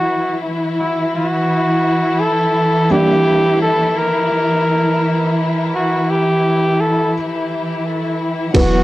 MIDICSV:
0, 0, Header, 1, 6, 480
1, 0, Start_track
1, 0, Tempo, 705882
1, 51, Time_signature, 4, 2, 24, 8
1, 6008, End_track
2, 0, Start_track
2, 0, Title_t, "Muted trumpet"
2, 0, Program_c, 0, 59
2, 0, Note_on_c, 0, 66, 92
2, 269, Note_off_c, 0, 66, 0
2, 539, Note_on_c, 0, 64, 73
2, 759, Note_off_c, 0, 64, 0
2, 783, Note_on_c, 0, 66, 76
2, 1496, Note_on_c, 0, 69, 87
2, 1506, Note_off_c, 0, 66, 0
2, 1982, Note_on_c, 0, 67, 92
2, 1992, Note_off_c, 0, 69, 0
2, 2456, Note_off_c, 0, 67, 0
2, 2461, Note_on_c, 0, 69, 99
2, 2705, Note_on_c, 0, 70, 91
2, 2715, Note_off_c, 0, 69, 0
2, 3658, Note_off_c, 0, 70, 0
2, 3909, Note_on_c, 0, 66, 80
2, 4148, Note_on_c, 0, 67, 82
2, 4158, Note_off_c, 0, 66, 0
2, 4626, Note_on_c, 0, 69, 86
2, 4636, Note_off_c, 0, 67, 0
2, 4859, Note_off_c, 0, 69, 0
2, 5830, Note_on_c, 0, 66, 94
2, 6008, Note_off_c, 0, 66, 0
2, 6008, End_track
3, 0, Start_track
3, 0, Title_t, "Felt piano"
3, 0, Program_c, 1, 0
3, 0, Control_c, 1, 64, 127
3, 0, Note_on_c, 1, 54, 61
3, 0, Note_on_c, 1, 59, 57
3, 0, Note_on_c, 1, 71, 68
3, 1942, Note_off_c, 1, 54, 0
3, 1944, Note_off_c, 1, 59, 0
3, 1949, Note_off_c, 1, 71, 0
3, 1974, Note_on_c, 1, 55, 62
3, 1977, Note_on_c, 1, 58, 60
3, 1979, Control_c, 1, 64, 0
3, 1983, Note_on_c, 1, 62, 56
3, 1990, Note_on_c, 1, 74, 73
3, 2099, Control_c, 1, 64, 127
3, 4853, Note_off_c, 1, 55, 0
3, 4854, Note_off_c, 1, 58, 0
3, 4857, Note_off_c, 1, 62, 0
3, 4860, Note_off_c, 1, 74, 0
3, 5806, Note_on_c, 1, 54, 69
3, 5812, Note_on_c, 1, 59, 66
3, 5817, Note_on_c, 1, 64, 68
3, 5820, Control_c, 1, 64, 0
3, 5822, Note_on_c, 1, 71, 76
3, 5921, Control_c, 1, 64, 127
3, 6008, Note_off_c, 1, 54, 0
3, 6008, Note_off_c, 1, 59, 0
3, 6008, Note_off_c, 1, 64, 0
3, 6008, Note_off_c, 1, 71, 0
3, 6008, End_track
4, 0, Start_track
4, 0, Title_t, "String section"
4, 0, Program_c, 2, 48
4, 0, Note_on_c, 2, 52, 69
4, 0, Note_on_c, 2, 64, 69
4, 5799, Note_off_c, 2, 52, 0
4, 5805, Note_on_c, 2, 78, 83
4, 5807, Note_on_c, 2, 52, 84
4, 5821, Note_off_c, 2, 64, 0
4, 6008, Note_off_c, 2, 52, 0
4, 6008, Note_off_c, 2, 78, 0
4, 6008, End_track
5, 0, Start_track
5, 0, Title_t, "Detuned saw bass"
5, 0, Program_c, 3, 39
5, 5811, Note_on_c, 3, 28, 94
5, 6008, Note_off_c, 3, 28, 0
5, 6008, End_track
6, 0, Start_track
6, 0, Title_t, "Drums"
6, 5810, Note_on_c, 9, 51, 85
6, 5811, Note_on_c, 9, 36, 97
6, 5878, Note_off_c, 9, 51, 0
6, 5879, Note_off_c, 9, 36, 0
6, 6008, End_track
0, 0, End_of_file